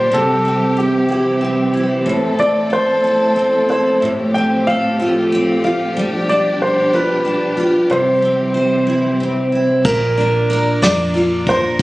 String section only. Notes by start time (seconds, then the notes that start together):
Already playing: G3 G4
0.12 E3 C4
2.05 A3 A4
4.01 A2 F3 G4
5.97 B2 D4
7.89 E3 G3 C4